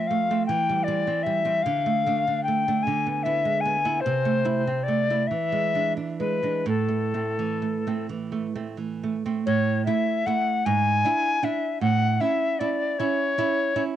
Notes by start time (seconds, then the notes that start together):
Already playing: F3 C4
0.07 A3 F5
0.31 A3 C4
0.46 E3 G5
0.69 G3
0.84 D5
0.88 G3 C4
1.07 C4
1.23 G3 E5
1.45 G3 C4
1.63 D3 F5
1.86 A3
2.06 A3 D4
2.27 D4
2.44 G5
2.48 A3
2.68 A3 D4
2.83 G#5
2.87 D3
3.06 B3
3.23 B3 E4 E5
3.45 G#3
3.61 G#5
3.65 B3
3.85 B3 E4
4.01 C5
4.06 C3
4.25 A3
4.45 A3 E4
4.67 C4
4.83 D5
4.88 A3
5.10 A3 E4
5.27 E3 E5
5.52 G#3
5.75 G#3 D4
5.97 D4
6.19 G#3 B4
6.43 G#3 D4
6.66 A2 A4
6.88 A3
7.14 A3 C4
7.39 E3
7.62 A3
7.87 A3 C4
8.09 E3
8.32 A3
8.55 A3 C4
8.77 E3
9.03 A3
9.26 A3 C4
9.46 A2 C#5
9.86 A3 E4 E5
10.26 A3 E4 F#5
10.66 G#2 G#5
11.05 D4 E4
11.43 D4 E4 E5
11.81 A2 F#5
12.20 C#4 E4 E5
12.59 C#4 E4 D5
12.99 C#4 E4 C#5
13.38 C#4 E4
13.76 C#4 E4